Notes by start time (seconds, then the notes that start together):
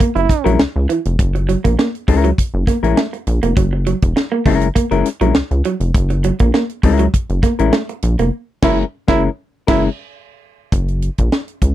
0.00 A#3, kick, closed hi-hat
0.15 F#1 E4, muted clean electric guitar stroke, closed hi-hat
0.29 kick, snare, closed hi-hat
0.44 A#1 F#3 G#3 C#4 E4 A#4, closed hi-hat
0.59 C#2, snare
0.76 C#2
0.89 E3, closed hi-hat
1.05 F1, closed hi-hat
1.19 F#1, kick, closed hi-hat
1.35 muted clean electric guitar stroke, closed hi-hat
1.49 F#3, closed hi-hat
1.64 A#1 A#3, kick, closed hi-hat
1.79 A#3, snare
1.95 closed hi-hat
2.08 C#2 G#3 C#4 E4 A#4, muted clean electric guitar stroke, kick, open hi-hat
2.24 F#3, closed hi-hat
2.38 kick, closed hi-hat
2.54 F#1
2.67 A#3, kick, snare, closed hi-hat
2.83 A1 G#3 C#4 E4 A#4, closed hi-hat
2.97 A3, snare
3.13 muted clean electric guitar stroke, closed hi-hat
3.27 A#1, closed hi-hat
3.43 F1 A#3, closed hi-hat
3.57 F#1 F#3, kick, closed hi-hat
3.73 muted clean electric guitar stroke
3.86 F#3, closed hi-hat
4.02 E1, kick, closed hi-hat
4.16 muted clean electric guitar stroke, snare
4.32 A#3
4.46 F#1 G#3 A3 C#4 E4 A#4, kick, open hi-hat
4.61 closed hi-hat
4.75 A#3, kick, closed hi-hat
4.91 F#1 G#3 C#4 E4 A#4, muted clean electric guitar stroke, closed hi-hat
5.05 snare, closed hi-hat
5.21 A#1 F#3 G#3 C#4 E4 A#4, closed hi-hat
5.35 C#2, snare
5.51 C#2, closed hi-hat
5.65 F#3, closed hi-hat
5.80 F1, closed hi-hat
5.95 F#1, kick, closed hi-hat
6.10 muted clean electric guitar stroke, closed hi-hat
6.24 F#3, closed hi-hat
6.39 A#1 A#3, kick, closed hi-hat
6.54 A#3, snare
6.69 closed hi-hat
6.83 C#2 G#3 C#4 E4 A#4, muted clean electric guitar stroke, kick, open hi-hat
6.99 F#3, closed hi-hat
7.14 kick, closed hi-hat
7.29 F#1, closed hi-hat
7.43 A#3, kick, snare, closed hi-hat
7.59 A1 G#3 C#4 E4 A#4, closed hi-hat
7.73 A3, snare
7.89 muted clean electric guitar stroke, closed hi-hat
8.02 A#1, closed hi-hat
8.19 F1 A#3, closed hi-hat
8.62 F#1 G#3 C#4 E4 A#4, kick, snare, crash
9.08 F#1 G#3 C#4 E4 A#4, kick, snare
9.67 F#1 G#3 C#4 E4 A#4, kick, snare, crash
10.72 F#1, kick, closed hi-hat
10.88 closed hi-hat
11.02 closed hi-hat
11.18 A#1, kick, closed hi-hat
11.32 snare
11.48 closed hi-hat
11.62 C#2, kick, closed hi-hat